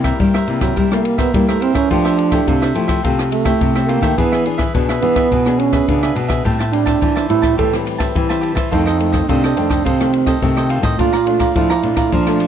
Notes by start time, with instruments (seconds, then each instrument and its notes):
Already playing: nylon-string guitar C3 G3 A#3 E4
0.04 cavaquinho A#4 C5 E5, kick, cross-stick, ride
0.20 nylon-string guitar G2 G3, cavaquinho E4 A#4 C5 E5, kick, ride
0.34 cavaquinho A#4 C5 E5, cross-stick
0.47 nylon-string guitar C3 G3 A#3 E4, ride
0.61 trombone F#3, cavaquinho A#4 C5 E5, kick, cross-stick, ride
0.76 nylon-string guitar C3 G3, trombone G3, cavaquinho E4 A#4 C5 E5, kick, ride
0.92 nylon-string guitar G3 A#3 E4, trombone A3, cross-stick
1.05 trombone A#3, muted cavaquinho stroke, ride
1.18 trombone B3, cavaquinho A#4 C5 E5, kick, cross-stick, ride
1.34 nylon-string guitar G2 G3 A#3 E4, trombone A#3, kick, ride
1.48 trombone A3, cavaquinho A#4 C5 E5, cross-stick
1.61 trombone C4, cavaquinho E4 A#4 C5 E5, ride
1.74 nylon-string guitar E3, trombone C#4, cavaquinho A#4 C5 E5, kick, cross-stick, ride
1.90 nylon-string guitar F3 A3 E4 G4, trombone D4, cavaquinho F4 A4 C5 E5, kick, ride
2.05 cavaquinho A4 C5 E5, cross-stick
2.18 muted cavaquinho stroke, ride
2.32 nylon-string guitar A3 E4 G4, cavaquinho A4 C5 E5, kick, cross-stick, ride
2.47 nylon-string guitar C3, cavaquinho F4 A4 C5 E5, kick, ride
2.62 cavaquinho A4 C5 E5, cross-stick
2.75 nylon-string guitar F3 A3 E4 G4, ride
2.88 cavaquinho A4 C5 E5, kick, cross-stick, ride
3.03 nylon-string guitar C3 F3 A3 E4 G4, cavaquinho F4 A4 C5 E5, kick, ride
3.19 cross-stick
3.31 trombone A3, muted cavaquinho stroke, ride
3.45 nylon-string guitar A3 E4 G4, cavaquinho A4 C5 E5, kick, cross-stick, ride
3.61 nylon-string guitar C3, kick, ride
3.75 cavaquinho A4 C5 E5, cross-stick
3.88 nylon-string guitar A3 E4 G4, trombone A#3, cavaquinho F4 A4 C5 E5, ride
4.01 nylon-string guitar D#3, cavaquinho A4 C5 E5, kick, cross-stick, ride
4.18 nylon-string guitar E3 B3 D4 G#4, trombone B3, cavaquinho D4 G#4 B4 E5, kick, ride
4.32 cavaquinho G#4 B4 E5, cross-stick
4.45 nylon-string guitar B3 D4 G#4, muted cavaquinho stroke, ride
4.58 cavaquinho G#4 B4 E5, kick, cross-stick, ride
4.74 nylon-string guitar B2 B3 D4 G#4, cavaquinho D4 G#4 B4 E5, kick, ride
4.89 cavaquinho G#4 B4 E5, cross-stick
5.02 nylon-string guitar E3 B3 D4 G#4, trombone B3, ride
5.16 cavaquinho G#4 B4 E5, kick, cross-stick, ride
5.32 nylon-string guitar B2 E3, cavaquinho D4 G#4 B4 E5, kick, ride
5.46 nylon-string guitar B3 D4 G#4, cross-stick
5.59 trombone C#4, muted cavaquinho stroke, ride
5.73 cavaquinho G#4 B4 E5, kick, cross-stick, ride
5.88 nylon-string guitar B2 C#3 B3 D4 G#4, trombone D4, kick, ride
6.03 cavaquinho G#4 B4 E5, cross-stick
6.15 nylon-string guitar B2, cavaquinho D4 G#4 B4 E5, ride
6.28 cavaquinho G#4 B4 E5, kick, cross-stick, ride
6.45 nylon-string guitar A2 G3 C4 E4, cavaquinho G4 C5 E5 A5, kick, ride
6.59 cavaquinho C5 E5 A5, cross-stick
6.72 nylon-string guitar G3 C4 E4, trombone D4, muted cavaquinho stroke, ride
6.86 cavaquinho C5 E5 A5, kick, cross-stick, ride
7.01 nylon-string guitar E3, cavaquinho G4 C5 E5 A5, kick, ride
7.16 cavaquinho C5 E5 A5, cross-stick
7.29 nylon-string guitar A2 G3 C4 E4, trombone E4, ride
7.42 cavaquinho C5 E5 A5, kick, cross-stick, ride
7.58 nylon-string guitar A2 E3, cavaquinho G4 C5 E5 A5, trombone A4, kick, ride
7.73 nylon-string guitar G3 C4 E4, cross-stick
7.85 muted cavaquinho stroke, ride
7.98 cavaquinho C5 E5 A5, kick, cross-stick, ride
8.15 nylon-string guitar E3 G3 C4 E4, kick, ride
8.29 cavaquinho C5 E5 A5, cross-stick
8.41 cavaquinho G4 C5 E5 A5, ride
8.55 nylon-string guitar E3, cavaquinho C5 E5 A5, kick, cross-stick, ride
8.71 nylon-string guitar F2 D#3 A3 C4, trombone D#4, cavaquinho F4 A4 C5 D#5, kick, ride
8.86 cavaquinho A4 C5 D#5, cross-stick
8.98 nylon-string guitar D#3 A3 C4, muted cavaquinho stroke, ride
9.12 cavaquinho A4 C5 D#5, kick, cross-stick, ride
9.28 nylon-string guitar C3 D#3 A3 C4, trombone D4, cavaquinho F4 A4 C5 D#5, kick, ride
9.43 cavaquinho A4 C5 D#5, cross-stick
9.57 nylon-string guitar F2 D#3 A3 C4, ride
9.70 cavaquinho A4 C5 D#5, kick, cross-stick, ride
9.85 nylon-string guitar F2 C3, trombone C4, cavaquinho F4 A4 C5 D#5, kick, ride
10.00 nylon-string guitar D#3 A3 C4, cross-stick
10.13 muted cavaquinho stroke, ride
10.26 cavaquinho A4 C5 D#5, kick, cross-stick, ride
10.42 nylon-string guitar C3 D#3 A3 C4, kick, ride
10.57 cavaquinho A4 C5 D#5, cross-stick
10.69 cavaquinho F4 A4 C5 D#5, ride
10.82 nylon-string guitar A2, cavaquinho A4 C5 D#5, kick, cross-stick, ride
10.99 nylon-string guitar A#2 F3 A3 D4, trombone F4, cavaquinho A4 D5 F5 A#5, kick, ride
11.13 cavaquinho D5 F5 A#5, cross-stick
11.26 nylon-string guitar F3 A3 D4, muted cavaquinho stroke, ride
11.39 cavaquinho D5 F5 A#5, kick, cross-stick, ride
11.55 nylon-string guitar F2 F3 A3 D4, trombone E4, cavaquinho A4 D5 F5 A#5, kick, ride
11.70 cavaquinho D5 F5 A#5, cross-stick
11.82 nylon-string guitar A#2 F3 A3 D4, ride
11.96 cavaquinho D5 F5 A#5, kick, cross-stick, ride
12.12 nylon-string guitar A#2 F3, trombone D4, cavaquinho A4 D5 F5 A#5, kick, ride
12.27 nylon-string guitar F3 A3 D4, cross-stick
12.40 muted cavaquinho stroke, ride